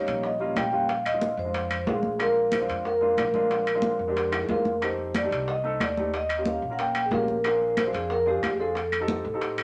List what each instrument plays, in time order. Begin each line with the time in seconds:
Already playing: grand piano G3, vibraphone C#5
0.00 grand piano A#3 C#4 D#4
0.07 upright bass A#1, high conga, high timbale
0.23 vibraphone D#5, high bongo, high conga
0.39 grand piano G3 A#3 C#4 F4, high conga
0.56 upright bass A#1, vibraphone G5, high bongo, low bongo, high conga, high timbale, claves
0.71 grand piano G3 A#3 C#4 F4
0.89 vibraphone F5, high bongo, high conga, high timbale
1.05 vibraphone D#5, high conga, high timbale, claves
1.13 grand piano G#3 C4 D4 F4
1.22 high bongo, high conga
1.37 upright bass F2, vibraphone C5, high bongo
1.45 grand piano G#3 C4 D4 F4
1.54 high bongo, high conga, high timbale
1.70 high bongo, high conga, high timbale, claves
1.86 upright bass A#1, grand piano G#3 C4 D4 F4, vibraphone G#4, high bongo, low bongo, high conga, low timbale
2.03 high bongo, high conga
2.19 grand piano G#3 C4 D4 F4, vibraphone A#4, high bongo, high conga, high timbale, claves
2.36 high conga
2.52 vibraphone C5, high bongo, high conga, high timbale, claves
2.60 grand piano G#3 C4 D4 F4
2.68 upright bass F2, high conga, high timbale
2.85 vibraphone A#4, high bongo, high conga
3.01 grand piano G#3 C4 D4 F4, high conga
3.17 upright bass A#1, high bongo, low bongo, high conga, high timbale, claves
3.34 grand piano G#3 C4 D4 F4, high conga
3.50 high bongo, high conga, high timbale
3.66 high conga, high timbale, claves
3.75 grand piano G#3 C4 D4 F4
3.82 high bongo, high conga
3.99 upright bass F2, high bongo
4.08 grand piano G#3 C4 D4 G4
4.16 high bongo, high conga, high timbale
4.32 high bongo, high conga, high timbale, claves
4.42 vibraphone G#4, low bongo
4.49 upright bass F2, grand piano G#3 C4 D4 F4, vibraphone A#4, high conga, low timbale
4.54 low bongo
4.65 low bongo, high conga
4.81 grand piano A3 C4 D#4 G4, vibraphone C5, high bongo, high conga, high timbale, claves
4.98 high conga
5.15 vibraphone D5, high bongo, high conga, high timbale, claves
5.23 grand piano A3 C4 D#4 G4
5.31 upright bass C2, high conga, high timbale
5.48 vibraphone D#5, high bongo, high conga
5.64 grand piano A3 C4 D#4 A4, high conga
5.80 upright bass D#2, vibraphone D5, high bongo, low bongo, high conga, high timbale, claves
5.97 grand piano A3 C4 D#4 G4, high conga
6.14 vibraphone D#5, high bongo, high conga, high timbale
6.29 high conga, high timbale, claves
6.37 grand piano A#3 C#4 F4 G4
6.45 vibraphone F5, high bongo, high conga
6.62 upright bass A#1, high bongo
6.70 grand piano A#3 C#4 F4 A#4, vibraphone F#5
6.79 vibraphone G5, high bongo, high conga, high timbale
6.95 high bongo, high conga, high timbale, claves
7.06 vibraphone G#4
7.11 upright bass A#1, grand piano A#3 C#4 F4 G4, vibraphone A#4, high bongo, low bongo, high conga, low timbale
7.28 high bongo, high conga
7.44 grand piano C4 D4 F4 G#4, vibraphone A#4, high bongo, high conga, high timbale, claves
7.61 high conga
7.77 vibraphone C5, high bongo, high conga, high timbale, claves
7.86 grand piano C4 D4 F4 G#4
7.93 upright bass F2, vibraphone G#4, high conga, high timbale
8.10 vibraphone A#4, high bongo, high conga
8.26 grand piano C4 D4 F4 G#4, vibraphone G4, high conga
8.43 upright bass F2, high bongo, low bongo, high conga, high timbale, claves
8.53 vibraphone G#4
8.59 grand piano C4 D4 F4 G#4, vibraphone A4
8.75 high bongo, high conga, high timbale
8.92 high conga, high timbale, claves
9.00 grand piano C4 D#4 G4 A4
9.08 high bongo, high conga
9.25 upright bass A2, high bongo
9.34 grand piano C4 D#4 G4 A4
9.41 high bongo, high conga, high timbale
9.58 high bongo, high conga, high timbale, claves